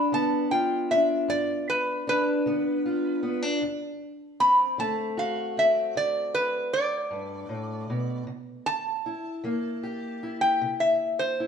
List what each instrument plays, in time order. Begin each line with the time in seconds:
Already playing: steel-string acoustic guitar D4, resonator guitar played with a steel bar B5
0.12 steel-string acoustic guitar D3 B3, resonator guitar played with a steel bar A5
0.51 steel-string acoustic guitar F4, resonator guitar played with a steel bar G5
0.91 steel-string acoustic guitar D4, resonator guitar played with a steel bar E5
1.28 steel-string acoustic guitar G2, resonator guitar played with a steel bar D5
1.70 resonator guitar played with a steel bar B4
2.07 steel-string acoustic guitar D4, resonator guitar played with a steel bar B4
2.46 steel-string acoustic guitar D3 B3
2.86 steel-string acoustic guitar F4
3.23 steel-string acoustic guitar B3
3.42 steel-string acoustic guitar D4
3.62 steel-string acoustic guitar D2
4.40 steel-string acoustic guitar C4, resonator guitar played with a steel bar B5
4.78 steel-string acoustic guitar D3 A3, resonator guitar played with a steel bar A5
5.17 steel-string acoustic guitar F#4, resonator guitar played with a steel bar F5
5.57 steel-string acoustic guitar C4, resonator guitar played with a steel bar E5
5.95 steel-string acoustic guitar D2, resonator guitar played with a steel bar D5
6.34 resonator guitar played with a steel bar B4
6.73 resonator guitar played with a steel bar D5
7.11 steel-string acoustic guitar G2
7.49 steel-string acoustic guitar A2
7.90 steel-string acoustic guitar B2
8.27 steel-string acoustic guitar C3
8.66 resonator guitar played with a steel bar A5
9.06 steel-string acoustic guitar E4
9.44 steel-string acoustic guitar E3 A#3
9.83 steel-string acoustic guitar G4
10.23 steel-string acoustic guitar E4
10.41 resonator guitar played with a steel bar G5
10.62 steel-string acoustic guitar C3
10.80 resonator guitar played with a steel bar E5
11.19 resonator guitar played with a steel bar C5
11.40 steel-string acoustic guitar E4